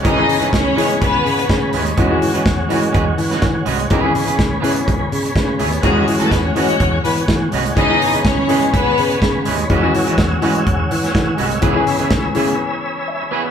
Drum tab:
HH |x-oxx-oxx-oxx-ox|x-oxx-oxx-oxx-ox|x-oxx-oxx-oxx-ox|x-oxx-oxx-oxx-ox|
SD |----o-------o---|----o------oo---|----o-------o---|----o-------o---|
BD |o---o---o---o---|o---o---o---o---|o---o---o---o---|o---o---o---o---|

HH |x-oxx-oxx-oxx-ox|x-oxx-oxx-oxx-ox|x-oxx-ox--------|
SD |----o-------o---|----o------oo---|----o-----------|
BD |o---o---o---o---|o---o---o---o---|o---o-----------|